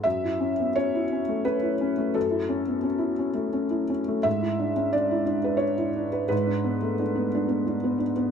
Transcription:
\new Staff \with { instrumentName = "Felt piano" } { \time 3/4 \key fis \minor \tempo 4 = 87 << { e''4 cis''4 b'4 | a'2~ a'8 r8 | e''4 d''4 cis''4 | b'2~ b'8 r8 | } \\ { fis,16 e'16 cis'16 b16 cis'16 e'16 cis'16 a16 cis'16 e'16 cis'16 a16 | fis,16 e'16 cis'16 b16 cis'16 e'16 cis'16 a16 cis'16 e'16 cis'16 a16 | gis,16 e'16 d'16 cis'16 d'16 e'16 d'16 b'16 d'16 e'16 d'16 b'16 | gis,16 d'16 b16 a16 d'16 b16 d'16 b16 d'16 b16 d'16 b16 | } >> }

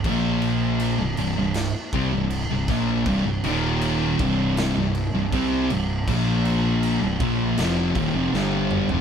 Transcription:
<<
  \new Staff \with { instrumentName = "Distorted electric guitar" } { \clef bass \time 4/4 \key c \minor \tempo 4 = 80 <bes, f bes>4~ <bes, f bes>16 <c, g,>16 <c, g,>16 <c, g,>8 r16 <c g>16 <c, g,>8 <c, g,>16 <bes, f bes>8 | <c, g,>16 <c, g,>16 <ees, bes, ees>4 <c, g, c>8. <c, g,>8 <c, g,>16 <c g c'>8 <c, g,>8 | <bes, f bes>4~ <bes, f bes>16 <c, g,>16 <bes, f bes>8 <f, c f>8 <ees, bes,>16 <f, c>16 <g, d g>8. <f, c>16 | }
  \new Staff \with { instrumentName = "Distorted electric guitar" } { \clef bass \time 4/4 \key c \minor <bes, f bes>4~ <bes, f bes>16 <c, g,>16 <c, g,>16 <c, g,>8 r16 <c g>16 <c, g,>8 <c, g,>16 <bes, f bes>8 | <c, g,>16 <c, g,>16 <ees, bes, ees>4 <c, g, c>8. <c, g,>8 <c, g,>16 <c g c'>8 <c, g,>8 | <bes, f bes>4~ <bes, f bes>16 <c, g,>16 <bes, f bes>8 <f, c f>8 <ees, bes,>16 <f, c>16 <g, d g>8. <f, c>16 | }
  \new Staff \with { instrumentName = "Fingered electric bass" } { \clef bass \time 4/4 \key c \minor bes,,4~ bes,,16 c,,16 c,,16 c,,8 r16 c,16 c,,8 c,,16 bes,,8 | c,,16 c,,16 ees,,4 c,,8. c,,8 c,,16 c,8 c,,8 | bes,,4~ bes,,16 c,,16 bes,,8 f,,8 ees,,16 f,,16 g,,8. f,,16 | }
  \new DrumStaff \with { instrumentName = "Drums" } \drummode { \time 4/4 <cymc bd>8 cymc8 cymc8 cymc8 <cymc sn>8 <cymc bd>8 cymc8 <cymc bd sn>8 | <cymc bd>8 cymc8 cymc8 <cymc bd>8 <cymc sn>8 cymc8 <cymc bd>8 cymc8 | <cymc bd>8 cymc8 cymc8 <cymc bd>8 <cymc sn>8 <cymc bd>8 sn16 tommh16 toml16 tomfh16 | }
>>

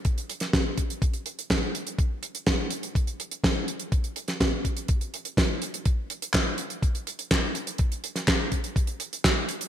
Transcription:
\new DrumStaff \with { instrumentName = "Drums" } \drummode { \time 4/4 \tempo 4 = 124 <hh bd>16 hh16 hh16 <hh sn>16 <hh bd sn>8 <hh bd>16 hh16 <hh bd>16 hh16 hh16 hh16 <hh bd sn>8 hh16 hh16 | <hh bd>8 hh16 hh16 <hh bd sn>8 hh16 hh16 <hh bd>16 hh16 hh16 hh16 <hh bd sn>8 hh16 hh16 | <hh bd>16 hh16 hh16 <hh sn>16 <hh bd sn>8 <hh bd>16 hh16 <hh bd>16 hh16 hh16 hh16 <hh bd sn>8 hh16 hh16 | <hh bd>8 hh16 hh16 <hc hh bd sn>8 hh16 hh16 <hh bd>16 hh16 hh16 hh16 <hc hh bd sn>8 hh16 hh16 |
<hh bd>16 hh16 hh16 <hh sn>16 <hc hh bd sn>8 <hh bd>16 hh16 <hh bd>16 hh16 hh16 hh16 <hc hh bd sn>8 hh16 hh16 | }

